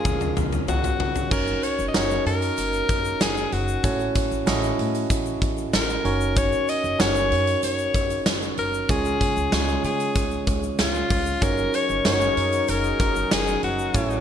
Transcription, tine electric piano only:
0.00 1.33 C#3 medium
0.00 1.31 C#4 medium
0.00 1.33 F4 medium
0.00 1.33 G#4 medium
0.00 0.29 A#4 medium
0.00 1.32 C#5 medium
1.31 1.74 C#4 medium
1.31 1.75 D#4 medium
1.31 1.75 F#4 medium
1.31 1.75 A#4 medium
1.31 1.75 C#5 medium
1.94 2.81 C#4 medium
1.94 2.81 D#4 medium
1.94 2.81 F#4 medium
1.94 2.82 A#4 medium
1.94 2.82 D#5 medium
3.83 4.75 A2 medium
3.83 4.27 C#4 medium
3.83 4.27 E4 medium
3.83 4.27 F#4 medium
3.83 4.28 A4 medium
3.83 4.28 C#5 medium
4.46 5.34 C#4 medium
4.46 5.34 E4 medium
4.46 5.34 F#4 medium
4.46 5.34 A4 medium
4.46 5.34 D#5 loud
6.04 6.81 C#4 medium
6.04 6.81 D#4 medium
6.04 6.81 F#4 medium
6.04 6.81 A#4 medium
6.04 6.81 C#5 medium
6.99 7.86 C#4 medium
6.99 7.86 D#4 medium
6.99 7.87 F#4 medium
6.99 7.87 A#4 medium
6.99 7.87 C#5 medium
8.89 9.80 C#3 medium
8.89 9.33 G#3 medium
8.89 9.33 C#4 medium
8.89 9.33 F4 medium
8.89 9.33 G#4 medium
8.89 9.33 C#5 medium
9.52 10.39 G#3 medium
9.52 10.39 C#4 medium
9.52 10.39 F4 medium
9.52 10.40 G#4 medium
9.52 10.40 C#5 medium
11.41 11.85 C#4 medium
11.41 11.85 D#4 medium
11.41 11.85 F#4 medium
11.41 11.86 A#4 medium
11.41 11.86 C#5 medium
12.05 12.92 C#4 medium
12.05 12.92 D#4 medium
12.05 12.92 F#4 medium
12.05 12.92 A#4 medium
12.05 12.92 C#5 medium
13.94 14.21 A2 medium
13.94 14.21 C#4 medium
13.94 14.21 E4 medium
13.94 14.21 F#4 medium
13.94 14.21 A4 medium
13.94 14.21 C#5 medium

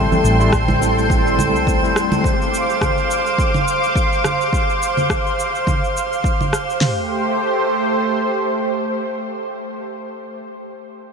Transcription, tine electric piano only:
0.00 0.36 G3 medium
0.00 0.36 A3 medium
0.00 0.36 C4 medium
0.00 0.36 E4 medium
0.00 0.37 A4 medium
0.39 0.49 G3 medium
0.39 0.50 A3 medium
0.39 0.50 C4 medium
0.39 0.50 E4 medium
0.39 0.50 A4 medium
0.80 1.21 G3 medium
0.80 1.22 A3 medium
0.80 1.22 C4 medium
0.80 1.22 E4 medium
0.80 1.22 A4 medium
1.25 1.79 G3 medium
1.25 1.79 A3 medium
1.25 1.79 C4 medium
1.25 1.80 E4 medium
1.25 1.80 A4 medium
1.83 2.21 G3 medium
1.83 2.21 A3 medium
1.83 2.21 C4 medium
1.83 2.22 E4 medium
1.83 2.22 C5 medium

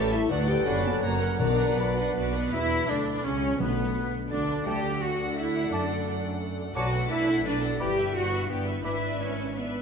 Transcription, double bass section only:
0.00 0.26 A1 medium
0.30 0.62 D2 medium
0.66 0.98 F#1 medium
1.03 1.36 F#1 medium
1.40 1.74 B1 medium
1.77 2.11 B1 medium
2.16 2.49 B1 medium
2.53 2.86 E2 medium
2.89 3.24 D2 medium
3.25 3.59 C#2 medium
3.60 4.12 B1 medium
4.31 4.64 D2 medium
4.67 5.68 D2 medium
5.73 6.76 F#2 medium
6.75 7.06 B1 medium
7.11 7.41 B1 medium
7.45 7.76 B1 medium
7.80 8.11 G1 medium
8.15 8.45 G1 medium
8.50 8.81 G1 medium
8.84 9.82 G#1 medium

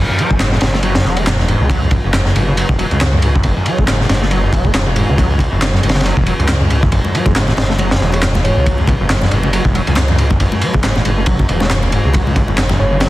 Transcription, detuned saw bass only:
0.31 0.57 F#1 loud
0.62 1.01 F#1 loud
1.05 1.55 E1 medium
1.61 1.99 C#2 medium
2.04 2.31 F#1 loud
2.35 2.64 F#1 loud
2.69 2.84 E1 medium
2.91 3.40 C#2 medium
3.44 3.53 F#1 medium
3.79 4.05 F#1 loud
4.09 4.49 F#1 medium
4.53 5.03 E1 medium
5.09 5.47 C#2 medium
5.52 5.79 F#1 loud
5.84 6.12 F#1 loud
6.17 6.32 E1 loud
6.39 6.88 C#2 medium
6.92 7.01 F#1 loud
7.26 7.53 F#1 loud
7.57 7.97 F#1 medium
8.01 8.51 E1 medium
8.57 8.95 C#2 medium
9.00 9.27 F#1 loud
9.32 9.60 F#1 loud
9.65 9.80 E1 loud
9.87 10.36 C#2 medium
10.41 10.49 F#1 medium
10.75 11.01 F#1 loud
11.06 11.45 F#1 medium
11.49 11.99 E1 medium
12.05 12.42 C#2 medium
12.48 12.75 F#1 loud
12.79 13.08 F#1 medium

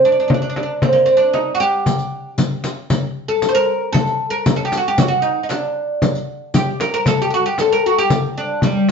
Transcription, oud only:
0.05 0.11 D4 medium
0.12 0.19 D4 medium
0.20 0.27 D4 medium
0.28 0.33 D4 soft
0.34 0.41 D4 medium
0.42 0.48 D4 soft
0.49 0.56 D4 medium
0.57 0.62 D4 soft
0.63 0.71 D4 medium
0.83 0.94 C4 medium
0.93 1.06 A#3 medium
1.06 1.16 C4 medium
1.17 1.33 D4 medium
1.33 1.54 D#4 medium
1.55 1.60 F#4 medium
1.60 2.67 G4 medium
3.28 3.48 A4 medium
3.49 3.54 C5 medium
3.55 3.92 A#4 medium
3.93 4.30 A4 loud
4.30 4.56 A#4 medium
4.56 4.64 A4 medium
4.65 4.77 G4 medium
4.77 4.87 F#4 medium
4.88 4.99 G4 medium
5.00 5.07 F#4 medium
5.08 5.23 F#4 medium
5.22 5.42 D#4 medium
5.43 5.49 D#4 medium
5.49 6.20 D4 medium
6.55 6.80 G4 medium
6.81 6.93 A#4 medium
6.94 7.07 A#4 loud
7.07 7.21 A4 loud
7.22 7.29 G4 medium
7.30 7.45 F#4 medium
7.30 7.33 G4 medium
7.46 7.59 G4 medium
7.60 7.72 A4 medium
7.72 7.86 A#4 medium
7.86 7.98 F#4 medium
7.98 8.37 G4 medium
8.37 8.64 D4 medium
8.63 8.91 G3 medium

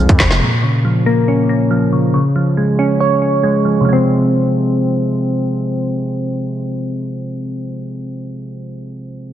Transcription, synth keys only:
0.00 0.43 F2 medium
0.00 0.20 C3 medium
0.00 0.43 F3 medium
0.00 0.43 G#3 medium
0.00 0.42 C4 medium
0.20 0.41 C3 medium
0.42 1.49 A#2 medium
0.63 1.71 C#3 medium
0.85 1.69 F3 medium
1.06 1.48 A#3 loud
1.28 2.14 C#4 medium
1.49 2.14 A#3 medium
1.71 2.14 F3 medium
1.93 2.13 C#3 medium
2.14 3.22 C#3 medium
2.36 3.44 F3 medium
2.57 3.42 G#3 medium
2.79 3.21 C#4 medium
3.00 3.87 C#5 medium
3.22 3.87 C#4 medium
3.43 3.87 G#3 medium
3.65 3.84 F3 medium
3.81 6.87 C3 medium
3.85 6.91 F3 medium
3.85 6.95 G#3 medium
3.93 6.99 C4 medium

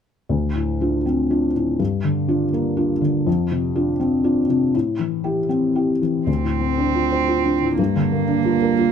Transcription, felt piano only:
0.29 1.75 D2 soft
0.55 0.95 A2 soft
0.81 1.03 D4 soft
0.81 1.03 F4 soft
1.06 1.45 C4 soft
1.30 1.52 D4 soft
1.30 1.52 F4 soft
1.55 1.80 A2 soft
1.79 3.23 G2 soft
2.04 2.43 D3 soft
2.28 2.50 D4 soft
2.28 2.50 F4 soft
2.53 2.92 A#3 soft
2.77 2.99 D4 soft
2.77 2.99 F4 soft
3.02 3.26 D3 soft
3.26 4.70 F2 soft
3.52 3.90 C3 soft
3.75 3.97 D4 soft
3.75 3.97 F4 soft
4.00 4.39 C4 soft
4.24 4.46 D4 soft
4.24 4.46 F4 soft
4.49 4.74 C3 soft
4.74 6.24 A2 soft
4.99 5.40 E3 soft
5.24 5.47 E4 soft
5.24 5.47 G4 soft
5.49 5.91 C4 soft
5.75 5.99 E4 soft
5.75 5.99 G4 soft
6.02 6.28 E3 soft
6.27 7.74 D2 soft
6.44 6.71 A2 soft
6.61 6.88 C4 soft
6.78 7.05 D4 soft
6.95 7.22 F4 soft
7.12 7.38 C5 soft
7.28 7.55 F4 soft
7.45 7.72 D4 soft
7.62 7.79 A2 soft
7.79 8.92 G2 soft
7.96 8.21 D3 soft
8.12 8.38 A#3 soft
8.28 8.54 D4 soft
8.45 8.71 F4 soft
8.62 8.88 A#4 soft
8.79 8.92 F4 soft

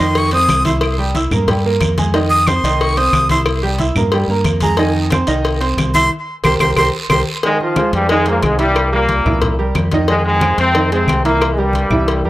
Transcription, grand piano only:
0.00 0.27 D#3 medium
0.00 0.27 D#4 medium
0.00 0.27 D#5 medium
0.33 0.60 C4 medium
0.33 0.60 C5 medium
0.33 0.60 C6 medium
0.65 0.92 E4 medium
0.65 0.93 E5 medium
0.65 0.93 E6 medium
0.98 1.12 G3 medium
0.98 1.12 G4 medium
0.98 1.13 G5 medium
1.15 1.29 E4 medium
1.15 1.29 E5 medium
1.15 1.29 E6 medium
1.32 1.46 A#3 medium
1.32 1.46 A#4 medium
1.32 1.46 A#5 medium
1.48 1.62 G3 medium
1.48 1.62 G4 medium
1.48 1.62 G5 medium
1.66 1.92 A#3 medium
1.66 1.92 A#4 medium
1.66 1.93 A#5 medium
1.98 2.11 G#3 medium
1.98 2.12 G#4 medium
1.98 2.12 G#5 medium
2.14 2.41 D#3 medium
2.14 2.41 D#4 medium
2.14 2.42 D#5 medium
2.48 2.61 C4 medium
2.48 2.61 C5 medium
2.48 2.62 C6 medium
2.64 2.91 D#3 medium
2.64 2.91 D#4 medium
2.64 2.91 D#5 medium
2.97 3.24 C4 medium
2.97 3.24 C5 medium
2.97 3.25 C6 medium
3.31 3.58 E4 medium
3.31 3.58 E5 medium
3.31 3.58 E6 medium
3.63 3.76 G3 medium
3.63 3.77 G4 medium
3.63 3.77 G5 medium
3.80 3.93 E4 medium
3.80 3.94 E5 medium
3.80 3.94 E6 medium
3.96 4.10 A#3 medium
3.96 4.10 A#4 medium
3.96 4.10 A#5 medium
4.13 4.27 G3 medium
4.13 4.27 G4 medium
4.13 4.27 G5 medium
4.30 4.57 A#3 medium
4.30 4.57 A#4 medium
4.30 4.57 A#5 medium
4.62 4.76 G#3 medium
4.62 4.76 G#4 medium
4.62 4.76 G#5 medium
4.78 5.06 D#3 medium
4.78 5.06 D#4 loud
4.78 5.06 D#5 medium
5.12 5.25 C4 medium
5.12 5.26 C5 medium
5.12 5.26 C6 medium
5.27 5.55 D#3 medium
5.27 5.55 D#4 loud
5.27 5.55 D#5 medium
5.61 5.88 C4 medium
5.61 5.88 C5 medium
5.61 5.89 C6 medium
5.95 6.08 E4 medium
5.95 6.09 E5 medium
5.95 6.09 E6 medium
6.46 6.56 G4 loud
6.46 6.56 A#4 loud
6.46 6.56 C5 loud
6.62 6.72 G4 medium
6.62 6.72 A#4 loud
6.62 6.72 C5 medium
6.78 6.89 G4 loud
6.78 6.89 A#4 loud
6.78 6.89 C5 loud
7.12 7.22 G4 loud
7.12 7.22 A#4 medium
7.12 7.22 C5 medium
7.45 7.72 D#3 medium
7.45 7.72 D#4 medium
7.45 7.72 D#5 medium
7.77 8.04 G#3 medium
7.77 8.04 G#4 medium
7.77 8.05 C5 medium
8.11 8.24 D#3 medium
8.11 8.24 D#4 medium
8.11 8.24 D#5 medium
8.27 8.54 G#3 medium
8.27 8.54 G#4 medium
8.27 8.54 C5 medium
8.59 8.86 E3 medium
8.59 8.87 E4 medium
8.59 8.87 E5 loud
8.92 9.19 G3 medium
8.92 9.20 G4 medium
8.92 9.20 A#4 medium
9.25 9.53 E3 medium
9.25 9.53 E4 medium
9.25 9.53 E5 medium
9.59 9.86 G3 medium
9.59 9.86 G4 medium
9.59 9.86 A#4 medium
9.93 10.06 D#3 medium
9.93 10.07 D#4 medium
9.93 10.07 D#5 medium
10.09 10.36 D#3 medium
10.09 10.36 D#4 medium
10.09 10.36 D#5 medium
10.42 10.69 G#3 medium
10.42 10.69 G#4 medium
10.42 10.69 C5 medium
10.75 10.89 D#3 medium
10.75 10.89 D#4 medium
10.75 10.89 D#5 medium
10.92 11.19 G#3 medium
10.92 11.19 G#4 medium
10.92 11.19 C5 medium
11.25 11.52 E3 medium
11.25 11.52 E4 loud
11.25 11.52 E5 medium
11.58 11.85 G3 medium
11.58 11.85 G4 medium
11.58 11.86 A#4 medium
11.91 12.18 E3 medium
11.91 12.19 E4 medium
11.91 12.19 E5 medium
12.25 12.30 G3 medium
12.25 12.30 G4 medium
12.25 12.30 A#4 medium

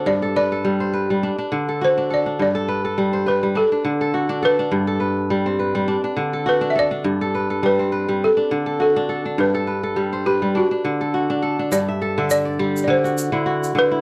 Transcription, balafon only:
0.07 0.35 D5 medium
0.37 1.78 D5 medium
1.84 1.97 C5 medium
2.14 2.41 D5 medium
2.42 3.31 D5 medium
3.28 3.55 B4 medium
3.57 4.46 A4 medium
4.45 6.48 B4 medium
6.49 6.71 B4 medium
6.70 6.76 E5 medium
6.79 7.61 D5 medium
7.66 8.25 B4 medium
8.24 8.81 A4 medium
8.82 9.35 A4 medium
9.40 10.30 B4 medium
10.26 10.39 G4 medium
10.57 11.40 F#4 medium
11.72 12.30 D5 medium
12.31 12.79 D5 medium
12.84 12.89 D5 medium
12.90 13.44 C5 medium
13.79 14.01 B4 loud

